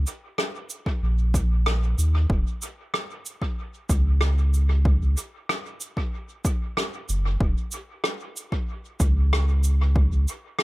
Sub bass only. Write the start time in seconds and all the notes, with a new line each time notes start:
1.02 A#1
1.98 D#2
2.30 D#1
3.90 C#2
5.01 C#2
7.09 F#1
7.41 D#1
9.00 C#2
10.12 C#2